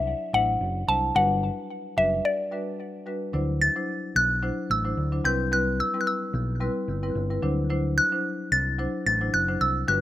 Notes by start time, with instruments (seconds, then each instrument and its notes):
Already playing: fingered electric bass C2, synth pluck E5
0.33 fingered electric bass A1, marimba F#3 D4 E4 C5, synth pluck F#5
0.61 fingered electric bass F#1
0.88 fingered electric bass C2, marimba F#3 D4 E4 C5, synth pluck A5
1.15 fingered electric bass G1, marimba G3 D4 F#4 B4, synth pluck F#5
1.97 fingered electric bass F#1, marimba G3 D4 F#4 B4, synth pluck E5
2.25 synth pluck D5
2.52 marimba G3 D4 F#4 B4
3.06 marimba G3 D4 F#4 B4
3.33 fingered electric bass D2, marimba F#3 D4 E4 C5
3.62 synth pluck A6
3.76 marimba F#3 D4 E4 C5
4.15 fingered electric bass B1, synth pluck F#6
4.42 marimba F#3 D4 E4 C5
4.70 fingered electric bass A1, synth pluck E6
4.85 marimba F#3 D4 E4 C5
4.97 fingered electric bass D2
5.12 marimba F#3 D4 E4 C5
5.24 fingered electric bass C2, marimba G3 C4 E4 B4, synth pluck G6
5.52 marimba G3 C4 E4 B4, synth pluck F#6
5.80 synth pluck E6
5.94 marimba G3 C4 E4 B4
6.01 synth pluck F#6
6.07 synth pluck E6
6.34 fingered electric bass B1
6.60 marimba G3 C4 E4 B4
6.88 fingered electric bass G1
7.03 marimba G3 C4 E4 B4
7.15 fingered electric bass G1
7.30 marimba G3 C4 E4 B4
7.42 fingered electric bass D2, marimba F#3 D4 E4 C5
7.70 marimba F#3 D4 E4 C5
7.98 synth pluck F#6
8.12 marimba F#3 D4 E4 C5
8.52 fingered electric bass C2, synth pluck A6
8.79 marimba F#3 D4 E4 C5
9.06 fingered electric bass A1, synth pluck A6
9.21 marimba F#3 D4 E4 C5
9.33 fingered electric bass F#1, synth pluck F#6
9.48 marimba F#3 D4 E4 C5
9.61 fingered electric bass C2, synth pluck E6
9.88 fingered electric bass G1, marimba G3 D4 F#4 B4, synth pluck F#6